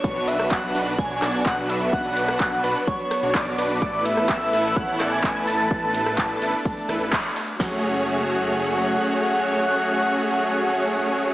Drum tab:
CC |----------------|----------------|----------------|----------------|
RD |--x---x---x---x-|--x---x---x---x-|--x---x---x---x-|--x---x---x---x-|
HH |xxoxxxoxxxoxxxox|xxoxxxoxxxoxxxox|xxoxxxoxxxoxxxox|xxoxxxoxxxoxxxox|
SH |x-xxx-xxxxxxx-xx|x-xxx-xxxxxxx-xx|x-xxx-xxxxxxx-xx|x-xxx-xxxxxxxxxx|
CP |----x-----x-x---|----x-------x---|----x-----x-x---|----x-------x---|
SD |---r------r-----|---r------r-----|---r------r-----|---r------r-----|
BD |o---o---o---o---|o---o---o---o---|o---o---o---o---|o---o---o---o---|

CC |x---------------|----------------|
RD |----------------|----------------|
HH |----------------|----------------|
SH |----------------|----------------|
CP |----------------|----------------|
SD |o---------------|----------------|
BD |o---------------|----------------|